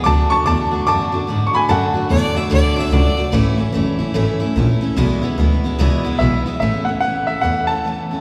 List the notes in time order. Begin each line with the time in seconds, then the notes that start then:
0.04 D2 D3 A3 D4 F#4 A5 D6
0.30 A3 D4 F#4 A5 C#6
0.46 E2 D3 A3 D4 F#4 A5 D6
0.71 E2 A3 D4 F#4
0.86 F#2 D3 A3 D4 F#4 A5 D6
1.12 F#2 A3 D4 F#4
1.27 G#2 D3 A3 D4 F#4
1.47 C#6
1.53 A3 D4 F#4 G#5 B5
1.69 F#2 D3 A3 D4 F#4 F#5 A5
1.94 A3 D4 F#4
2.09 E2 D3 A3 D4 F#4 D5
2.35 A3 D4 F#4 E5
2.50 D2 D3 A3 D4 F#4 D5
2.76 A3 D4 F#4 E5
2.91 C#2 D3 A3 D4 F#4 D5
3.17 A3 D4 F#4
3.32 A1 A2 E3 A3 C#4 E4
3.57 A1 A3 C#4 E4
3.72 F#1 E3 A3 C#4 E4
3.99 F#1 A3 C#4 E4
4.14 G#1 A2 E3 A3 C#4 E4
4.40 A3 C#4 E4
4.56 A#1 E3 A3 C#4 E4
4.81 A3 C#4 E4
4.96 B1 E2 B2 E3 G#3 B3 E4
5.22 E3 G#3 B3 E4
5.38 D2 E3 G#3 B3 E4
5.64 E3 G#3 B3 E4
5.79 C#2 E2 B2 E3 G#3 B3 E4
6.04 E3 G#3 B3 E4
6.19 B1 E3 G#3 B3 E4 E5
6.46 E3 G#3 B3 E4
6.60 A1 A2 E3 A3 C#4 E4 E5
6.85 C#4 E4 F#5
6.89 A3
7.00 E3 A3 C#4 F#5
7.05 E4
7.27 A3 C#4 E4 E5
7.41 E2 A2 E3 A3 C#4 E4 F#5
7.67 C#4 E4 A5
7.72 A3
7.85 E3 A3 C#4 E4
8.11 A3 C#4 E4